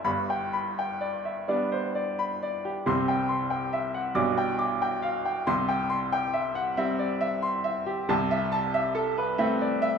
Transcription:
0.04 2.83 G1 medium
0.04 2.82 G2 medium
0.04 0.44 B5 medium
0.30 0.68 G5 medium
0.53 0.91 B5 medium
0.79 1.15 G5 medium
1.01 1.38 D5 medium
1.25 1.48 E5 soft
1.48 2.83 G3 medium
1.48 2.83 B3 medium
1.48 2.83 D4 medium
1.48 1.85 D5 medium
1.72 1.95 C5 medium
1.95 2.33 D5 medium
2.19 2.56 B5 medium
2.43 2.78 D5 medium
2.65 2.87 G4 medium
2.86 4.11 C2 medium
2.86 4.11 C3 medium
2.86 4.11 G3 medium
2.86 4.12 C4 medium
2.86 3.21 C6 medium
3.08 3.42 G5 medium
3.29 3.63 C6 medium
3.50 3.85 G5 medium
3.73 4.07 E5 medium
3.94 4.16 F#5 medium
4.15 5.43 B1 medium
4.15 5.43 B2 medium
4.15 5.43 G3 medium
4.15 5.44 D4 medium
4.15 4.50 D6 medium
4.38 4.73 G5 medium
4.59 4.94 D6 medium
4.82 5.17 G5 medium
5.02 5.38 F5 medium
5.25 5.48 G5 medium
5.47 8.05 C2 medium
5.47 8.05 C3 medium
5.47 5.82 C6 medium
5.69 6.04 G5 medium
5.90 6.25 C6 medium
6.13 6.47 G5 medium
6.34 6.69 E5 medium
6.55 6.77 F#5 medium
6.77 8.05 G3 medium
6.77 8.05 C4 medium
6.77 7.12 E5 medium
6.99 7.21 D5 medium
7.21 7.56 E5 medium
7.42 7.78 C6 medium
7.64 8.00 E5 medium
7.86 8.09 G4 medium
8.09 9.98 C2 medium
8.09 9.98 C3 medium
8.09 8.44 A5 medium
8.31 8.66 E5 medium
8.52 8.87 A5 medium
8.74 9.09 E5 medium
8.95 9.30 A4 medium
9.18 9.39 B4 medium
9.38 9.98 A3 medium
9.38 9.98 C4 medium
9.38 9.74 E5 medium
9.61 9.83 D5 medium
9.82 9.98 E5 medium

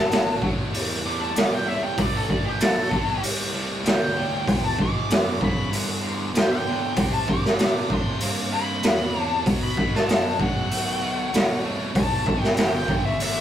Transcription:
0.00 0.41 A5 loud
0.09 0.71 A1 medium
0.09 0.38 A2 medium
0.09 0.38 F#3 loud
0.09 snare loud
0.09 open hi-hat medium
0.41 0.70 A2 medium
0.41 0.70 F#3 medium
0.41 kick medium
0.72 1.33 E2 medium
0.72 1.01 A2 medium
0.72 1.01 G3 medium
0.72 open hi-hat medium
1.04 1.32 A2 medium
1.04 1.33 G3 medium
1.04 1.20 D6 loud
1.20 1.35 A5 medium
1.35 1.96 C2 medium
1.35 1.63 A2 medium
1.35 1.64 G3 medium
1.35 1.51 D6 medium
1.35 snare loud
1.35 open hi-hat medium
1.53 1.68 G5 medium
1.66 1.94 A2 medium
1.66 1.95 G3 medium
1.66 1.82 E5 medium
1.84 1.98 G5 medium
1.98 2.59 A1 medium
1.98 2.26 A2 medium
1.98 2.26 E3 loud
1.98 2.15 D5 loud
1.98 kick loud
1.98 open hi-hat medium
2.15 2.30 A4 medium
2.29 2.57 A2 medium
2.29 2.58 E3 medium
2.29 2.45 D5 medium
2.29 kick medium
2.45 2.61 G4 loud
2.60 3.21 B1 medium
2.60 2.88 A2 medium
2.60 2.89 F#3 medium
2.60 3.21 A4 loud
2.60 snare loud
2.60 open hi-hat medium
2.91 3.20 A2 medium
2.91 3.20 F#3 medium
2.91 kick medium
3.21 3.83 C2 medium
3.21 3.50 A2 medium
3.21 3.51 G3 medium
3.21 open hi-hat medium
3.52 3.81 A2 medium
3.52 3.81 G3 medium
3.83 4.45 D2 medium
3.83 4.12 A2 medium
3.83 4.12 G3 medium
3.83 4.01 G5 loud
3.83 snare loud
3.83 open hi-hat medium
4.02 4.62 G5 loud
4.15 4.44 A2 medium
4.15 4.44 G3 medium
4.46 4.75 E2 medium
4.46 4.77 E2 medium
4.46 4.75 B2 loud
4.46 kick loud
4.46 open hi-hat medium
4.65 4.79 A5 medium
4.77 5.06 E2 medium
4.77 5.07 B2 medium
4.77 muted fingered electric bass stroke soft
4.77 kick medium
4.82 5.11 D6 medium
5.08 5.37 E2 medium
5.08 5.71 F#2 medium
5.08 5.37 C#3 loud
5.08 snare loud
5.08 open hi-hat medium
5.13 5.42 D6 loud
5.40 5.69 E2 medium
5.40 5.69 C#3 medium
5.40 kick medium
5.44 5.73 B5 loud
5.70 6.00 E2 medium
5.70 6.33 G2 medium
5.70 6.00 D3 medium
5.70 open hi-hat medium
6.01 6.31 E2 medium
6.01 6.31 D3 medium
6.33 6.62 E2 medium
6.33 6.95 B2 medium
6.33 6.63 D3 medium
6.33 snare loud
6.33 open hi-hat medium
6.38 6.51 G5 loud
6.52 7.12 G5 loud
6.65 6.94 E2 medium
6.65 6.94 D3 medium
6.96 7.25 C3 medium
6.96 7.58 C3 medium
6.96 7.25 G3 medium
6.96 kick loud
6.96 open hi-hat medium
7.13 7.28 A5 medium
7.27 7.56 C3 medium
7.27 7.56 G3 medium
7.27 7.59 D6 loud
7.27 kick medium
7.45 snare soft
7.58 8.20 A2 medium
7.58 7.87 C3 medium
7.58 7.87 A3 loud
7.58 7.90 D6 medium
7.58 snare loud
7.58 open hi-hat medium
7.90 8.18 C3 medium
7.90 8.19 A3 medium
7.90 8.23 C6 loud
7.90 kick medium
8.20 8.82 G2 medium
8.20 8.49 C3 medium
8.20 8.50 A#3 loud
8.20 open hi-hat medium
8.52 8.81 C3 medium
8.52 8.81 A#3 medium
8.52 9.20 B5 loud
8.83 9.45 E2 medium
8.83 9.12 C3 medium
8.83 9.12 A#3 medium
8.83 snare loud
8.83 open hi-hat medium
9.15 9.43 C3 medium
9.15 9.43 A#3 medium
9.20 9.44 A5 loud
9.46 9.74 B2 medium
9.46 10.07 B2 medium
9.46 9.75 F#3 medium
9.46 kick loud
9.46 open hi-hat medium
9.63 9.93 B5 medium
9.77 10.06 B2 medium
9.77 10.06 F#3 medium
9.77 kick medium
9.95 10.40 A5 medium
9.95 snare soft
10.08 10.69 F#2 medium
10.08 10.36 B2 medium
10.08 10.37 G#3 loud
10.08 snare loud
10.08 open hi-hat medium
10.39 10.68 B2 medium
10.39 10.68 G#3 medium
10.39 11.62 F#5 loud
10.39 kick medium
10.69 11.31 B1 medium
10.69 10.98 B2 medium
10.69 10.98 A3 loud
10.69 open hi-hat medium
11.01 11.30 B2 medium
11.01 11.30 A3 medium
11.32 11.93 C2 medium
11.32 11.61 B2 medium
11.32 11.61 A3 medium
11.32 snare loud
11.32 open hi-hat medium
11.62 11.91 B2 medium
11.62 11.92 A3 medium
11.94 12.56 B1 medium
11.94 12.23 E2 medium
11.94 12.23 B2 loud
11.94 12.41 A5 loud
11.94 kick loud
11.94 open hi-hat medium
12.26 12.54 E2 medium
12.26 12.54 B2 medium
12.26 kick medium
12.41 12.56 G5 loud
12.41 snare soft
12.56 13.17 G1 medium
12.56 12.85 E2 medium
12.56 12.85 C#3 loud
12.56 12.72 G5 loud
12.56 snare loud
12.56 open hi-hat medium
12.74 13.03 G5 medium
12.86 13.15 E2 medium
12.86 13.16 C#3 medium
12.86 kick medium
13.05 13.20 E5 medium
13.18 13.41 A1 medium
13.18 13.41 E2 medium
13.18 13.41 D3 medium
13.18 open hi-hat medium
13.23 13.41 E5 medium

